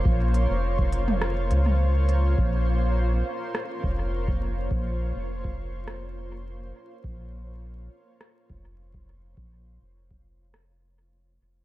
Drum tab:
HH |--x---x---x---x-|----------------|----------------|----------------|
SD |--------r-------|--------r-------|--------r-------|--------r-------|
T2 |-------o---o----|----------------|----------------|----------------|
BD |o----o----------|o---------o--o--|o----o----------|o---------o--o--|

HH |----------------|
SD |--------r-------|
T2 |----------------|
BD |o----o----------|